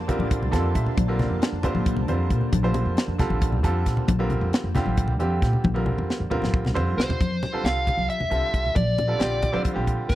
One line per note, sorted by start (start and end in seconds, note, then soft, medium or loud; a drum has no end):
0.00 0.16 F2 medium
0.00 7.16 A#3 medium
0.00 7.15 D4 medium
0.00 7.16 C5 medium
0.00 7.16 A5 medium
0.08 0.45 D3 medium
0.08 0.46 G3 medium
0.08 0.46 C4 medium
0.08 0.46 F4 medium
0.08 0.46 A#4 medium
0.08 kick medium
0.08 closed hi-hat medium
0.08 low conga medium
0.19 0.53 A1 medium
0.19 high conga medium
0.19 low conga soft
0.31 kick loud
0.31 closed hi-hat medium
0.42 low conga medium
0.51 0.72 F2 medium
0.51 0.99 D3 medium
0.51 0.99 G3 medium
0.51 0.99 C4 medium
0.51 0.99 F4 medium
0.51 0.99 A4 medium
0.51 0.73 A5 medium
0.51 kick medium
0.51 snare soft
0.51 closed hi-hat medium
0.75 0.85 A#2 medium
0.75 0.96 E5 medium
0.75 kick medium
0.75 closed hi-hat medium
0.75 low conga soft
0.86 low conga medium
0.97 1.26 A#1 loud
0.97 kick loud
0.97 closed hi-hat medium
0.97 high conga medium
0.97 low conga soft
1.08 1.55 D3 medium
1.08 1.55 G3 medium
1.08 1.55 C4 medium
1.08 1.55 F4 medium
1.08 1.55 A#4 medium
1.08 low conga soft
1.19 snare soft
1.19 closed hi-hat medium
1.19 low conga medium
1.30 1.40 F2 medium
1.42 snare loud
1.42 closed hi-hat medium
1.53 1.72 F2 medium
1.63 2.01 D3 medium
1.63 2.01 G3 medium
1.63 2.01 C4 medium
1.63 2.01 F4 medium
1.63 2.02 C5 medium
1.63 kick medium
1.63 closed hi-hat medium
1.63 low conga medium
1.75 2.08 A1 medium
1.75 high conga medium
1.86 kick loud
1.86 closed hi-hat medium
1.97 low conga medium
2.08 2.27 F2 medium
2.08 2.55 D3 medium
2.08 2.55 G3 medium
2.08 2.55 C4 medium
2.08 2.55 F4 medium
2.08 2.55 C5 medium
2.08 closed hi-hat medium
2.30 2.40 A#2 medium
2.30 kick medium
2.30 closed hi-hat medium
2.30 low conga soft
2.41 low conga medium
2.52 2.82 A#1 medium
2.52 kick loud
2.52 closed hi-hat medium
2.52 high conga medium
2.52 low conga soft
2.63 3.10 D3 medium
2.63 3.10 G3 medium
2.63 3.11 C4 medium
2.63 3.11 F4 medium
2.63 3.11 C5 medium
2.63 low conga soft
2.74 closed hi-hat medium
2.74 low conga medium
2.85 2.95 F2 medium
2.97 snare loud
2.97 closed hi-hat medium
3.08 3.27 F2 medium
3.18 3.56 D3 medium
3.18 3.57 G3 medium
3.18 3.57 C4 medium
3.18 3.57 F4 medium
3.18 3.57 A4 medium
3.18 kick medium
3.18 snare soft
3.18 closed hi-hat medium
3.18 low conga medium
3.30 3.64 A1 medium
3.30 high conga medium
3.42 kick loud
3.42 closed hi-hat medium
3.52 low conga medium
3.63 3.83 F2 medium
3.63 4.10 D3 medium
3.63 4.10 G3 medium
3.63 4.11 C4 medium
3.63 4.11 F4 medium
3.63 4.11 A4 loud
3.63 kick medium
3.63 closed hi-hat medium
3.86 3.96 A#2 medium
3.86 kick medium
3.86 snare soft
3.86 closed hi-hat medium
3.86 low conga soft
3.97 low conga medium
4.08 4.37 A#1 loud
4.08 kick loud
4.08 closed hi-hat loud
4.08 high conga medium
4.08 low conga soft
4.19 4.66 D3 medium
4.19 4.66 G3 medium
4.19 4.66 C4 medium
4.19 4.66 F4 medium
4.19 4.66 A#4 medium
4.19 low conga soft
4.30 closed hi-hat medium
4.30 low conga medium
4.41 4.51 F2 medium
4.53 snare loud
4.53 closed hi-hat medium
4.64 4.83 F2 medium
4.75 5.12 D3 medium
4.75 5.12 G3 medium
4.75 5.13 C4 medium
4.75 5.13 F4 medium
4.75 5.13 G4 medium
4.75 kick medium
4.75 snare soft
4.75 closed hi-hat medium
4.75 low conga medium
4.85 5.20 A1 medium
4.85 high conga medium
4.97 kick loud
4.97 closed hi-hat medium
5.08 low conga medium
5.19 5.39 F2 loud
5.19 5.66 D3 medium
5.19 5.66 G3 medium
5.19 5.66 C4 medium
5.19 5.67 F4 medium
5.19 5.67 G4 medium
5.19 closed hi-hat medium
5.42 5.52 A#2 medium
5.42 kick medium
5.42 snare soft
5.42 closed hi-hat medium
5.53 low conga medium
5.64 5.93 A#1 medium
5.64 kick loud
5.64 high tom medium
5.64 high conga medium
5.74 6.21 D3 medium
5.74 6.22 G3 medium
5.74 6.22 C4 medium
5.74 6.22 F4 medium
5.74 6.22 A#4 medium
5.74 high tom medium
5.86 low conga loud
5.98 6.07 F2 medium
5.98 high tom medium
5.98 low conga soft
6.10 snare medium
6.20 6.39 F2 medium
6.30 6.68 D3 medium
6.30 6.68 G3 medium
6.30 6.68 C4 medium
6.30 6.68 F4 medium
6.30 6.68 A#4 medium
6.30 mid tom medium
6.30 low conga medium
6.42 6.75 A1 medium
6.42 snare medium
6.42 high conga medium
6.54 kick loud
6.65 snare medium
6.65 low conga medium
6.74 6.95 F2 medium
6.74 7.19 D3 medium
6.74 7.19 G3 medium
6.74 7.20 C4 medium
6.74 7.20 F4 medium
6.74 7.20 C5 medium
6.74 floor tom medium
6.97 7.07 C2 medium
6.97 7.67 C5 medium
6.97 snare loud
7.09 floor tom medium
7.09 low conga medium
7.20 7.39 F2 medium
7.20 kick loud
7.20 closed hi-hat medium
7.20 high conga medium
7.43 snare soft
7.43 closed hi-hat medium
7.43 low conga medium
7.53 8.18 D3 medium
7.53 8.19 G3 medium
7.53 8.19 C4 medium
7.53 8.19 F4 medium
7.53 8.19 A4 medium
7.53 low conga soft
7.64 7.93 C2 medium
7.64 8.09 F5 loud
7.64 snare medium
7.64 closed hi-hat medium
7.77 low conga soft
7.87 kick medium
7.87 closed hi-hat medium
7.87 low conga medium
7.98 8.07 C2 medium
7.98 high conga medium
8.10 8.76 E5 medium
8.10 closed hi-hat medium
8.20 8.30 F2 medium
8.20 low conga medium
8.30 8.41 C2 medium
8.30 8.75 D3 medium
8.30 8.75 G3 medium
8.30 8.75 C4 medium
8.30 8.76 F4 medium
8.30 8.76 A4 medium
8.30 closed hi-hat medium
8.54 8.73 C2 medium
8.54 kick medium
8.54 closed hi-hat medium
8.66 low conga medium
8.76 9.14 A#1 medium
8.76 9.61 D5 medium
8.76 kick loud
8.76 closed hi-hat medium
8.76 high conga medium
8.98 closed hi-hat medium
8.98 low conga medium
9.07 9.17 D3 medium
9.07 9.17 G3 medium
9.07 9.18 C4 medium
9.07 9.18 F4 medium
9.07 9.18 A4 medium
9.07 low conga soft
9.18 9.49 A#1 medium
9.18 9.48 D3 medium
9.18 9.48 G3 medium
9.18 9.48 C4 medium
9.18 9.48 F4 medium
9.18 9.48 G4 medium
9.18 snare medium
9.18 closed hi-hat medium
9.32 low conga soft
9.42 kick medium
9.42 closed hi-hat medium
9.42 low conga medium
9.52 9.63 D2 medium
9.52 9.72 D3 medium
9.52 9.72 G3 medium
9.52 9.72 C4 medium
9.52 9.72 F4 medium
9.52 9.72 C5 medium
9.52 high conga medium
9.65 muted upright bass stroke soft
9.65 kick medium
9.65 closed hi-hat medium
9.74 9.95 A#1 medium
9.74 10.15 D3 medium
9.74 10.15 G3 medium
9.74 10.15 C4 medium
9.74 10.15 F4 medium
9.74 10.15 G4 medium
9.87 kick medium
9.87 closed hi-hat medium
10.09 10.15 A#2 medium
10.09 10.15 C5 medium
10.09 kick medium
10.09 snare soft
10.09 closed hi-hat medium